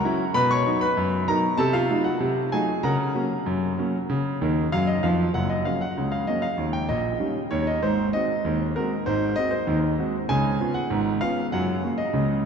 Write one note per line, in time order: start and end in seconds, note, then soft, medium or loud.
0.00 0.31 A#4 medium
0.00 0.31 F#5 medium
0.00 0.22 A#5 loud
0.05 0.21 F#3 medium
0.05 0.22 C#4 medium
0.05 0.22 E4 medium
0.34 0.61 B2 medium
0.34 0.50 B4 medium
0.34 0.50 B5 loud
0.51 0.80 C#5 medium
0.51 0.80 C#6 loud
0.66 0.83 F#3 medium
0.66 0.83 B3 soft
0.66 0.83 D#4 medium
0.81 1.25 B4 medium
0.81 1.25 B5 loud
0.97 1.23 F#2 medium
1.28 1.45 F#3 medium
1.28 1.45 B3 medium
1.28 1.45 D#4 medium
1.28 1.57 A#4 medium
1.28 1.57 A#5 loud
1.58 1.85 C3 medium
1.58 1.73 A4 medium
1.58 1.73 A5 loud
1.73 2.03 F4 medium
1.73 2.03 F5 medium
1.89 2.06 F#3 soft
1.89 2.06 A3 soft
1.89 2.07 D#4 medium
2.04 2.49 F#4 medium
2.04 2.42 F#5 medium
2.20 2.47 C3 medium
2.52 2.70 F#3 medium
2.52 2.70 A3 medium
2.52 2.70 D#4 medium
2.52 2.82 G#4 medium
2.52 2.82 G#5 medium
2.83 3.10 C#3 medium
2.83 4.68 A#4 medium
2.83 4.68 F#5 medium
2.83 4.67 A#5 medium
3.15 3.32 F#3 medium
3.15 3.32 A#3 soft
3.15 3.33 C#4 medium
3.46 3.73 F#2 medium
3.78 3.95 F#3 medium
3.78 3.96 A#3 soft
3.78 3.96 C#4 medium
4.09 4.36 C#3 medium
4.41 4.64 D#2 medium
4.41 4.65 D#3 medium
4.72 4.96 F#2 medium
4.72 4.96 F#3 medium
4.72 4.88 F5 medium
4.87 5.03 D#5 medium
5.03 5.27 F2 medium
5.03 5.27 F3 medium
5.03 5.28 F5 medium
5.34 5.61 F#1 medium
5.34 5.61 F#2 medium
5.34 5.50 F#5 medium
5.50 5.65 D#5 medium
5.65 5.83 F#3 soft
5.65 5.83 A#3 soft
5.65 5.83 C#4 soft
5.65 5.81 F5 medium
5.81 6.10 F#5 medium
5.98 6.23 C#2 medium
5.98 6.23 C#3 medium
6.12 6.27 F5 medium
6.27 6.44 F#3 soft
6.27 6.45 A#3 soft
6.27 6.45 C#4 soft
6.27 6.43 D#5 medium
6.42 6.67 F5 medium
6.58 6.82 D#2 medium
6.58 6.83 D#3 medium
6.73 6.89 G5 medium
6.89 7.14 A#1 medium
6.89 7.13 A#2 medium
6.89 7.38 D#5 medium
7.20 7.37 G3 soft
7.20 7.37 C#4 soft
7.20 7.37 D#4 soft
7.51 7.76 D#2 medium
7.51 7.76 D#3 medium
7.51 7.66 C#5 medium
7.67 7.82 D#5 medium
7.83 8.08 G#1 medium
7.83 8.08 G#2 medium
7.83 8.07 C5 medium
8.13 8.31 G#3 soft
8.13 8.31 C4 soft
8.13 8.31 F#4 soft
8.13 8.62 D#5 medium
8.45 8.70 D#2 medium
8.45 8.70 D#3 medium
8.76 8.92 G#3 soft
8.76 8.93 C4 soft
8.76 8.93 F#4 medium
8.76 9.04 A#4 medium
9.06 9.32 G#1 medium
9.06 9.32 G#2 medium
9.06 9.35 C5 medium
9.36 9.53 G#3 soft
9.36 9.54 C4 soft
9.36 9.54 F#4 soft
9.36 9.51 D#5 medium
9.51 9.76 C5 medium
9.67 9.93 D#2 medium
9.67 9.93 D#3 medium
9.98 10.15 G#3 soft
9.98 10.15 C4 soft
9.98 10.16 F#4 medium
10.29 10.55 C#2 medium
10.29 10.55 C#3 medium
10.29 10.72 G#5 loud
10.60 10.77 B3 soft
10.60 10.77 C#4 soft
10.60 10.77 F4 medium
10.74 11.11 F#5 medium
10.90 11.16 G#1 medium
10.90 11.16 G#2 medium
11.21 11.38 B3 soft
11.21 11.38 C#4 soft
11.21 11.39 F4 medium
11.21 11.45 F5 medium
11.52 11.79 F#2 medium
11.52 11.78 F#3 medium
11.52 11.89 F#5 medium
11.83 12.00 A#3 soft
11.83 12.00 C#4 soft
11.83 12.01 F#4 soft
11.98 12.35 D#5 medium
12.13 12.39 C#2 medium
12.13 12.40 C#3 medium